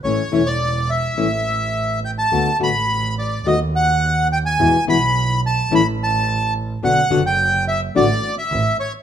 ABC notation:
X:1
M:4/4
L:1/16
Q:1/4=106
K:Amix
V:1 name="Bandoneon"
c3 d3 e8 g a- | a2 b4 d2 ^d2 f4 g ^g- | ^g2 b4 a2 b2 a4 z2 | f3 g3 e2 d3 e3 c2 |]
V:2 name="Nylon-string guitar"
[E,A,CE]2 [E,A,CE]2 z4 [E,A,CE]2 z6 | [D,A,B,F]2 [D,A,B,F]2 z4 [^D,A,B,F]2 z6 | [B,,E,^G,B,E]2 [B,,E,G,B,E]2 z4 [E,A,CE]2 z6 | [B,,D,B,DF]2 [B,,D,B,DF]2 z4 [D,A,DF]2 z6 |]
V:3 name="Double bass" clef=bass
A,,,2 E,,,6 A,,,8 | D,,2 A,,,6 ^D,,8 | E,,2 B,,,6 A,,,8 | B,,,2 F,,,6 A,,,2 z2 A,,,2 z2 |]